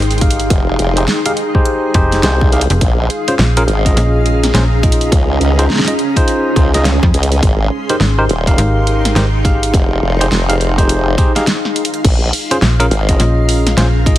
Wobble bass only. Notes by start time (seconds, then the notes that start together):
0.50 F1
0.79 F1
2.23 C2
2.81 A#1
3.68 G#1
5.12 C#2
5.40 C#2
6.56 C#2
7.14 C#2
7.43 G#1
8.29 D#1
9.74 F1
10.02 F1
10.31 F1
12.05 A#1
12.91 G#1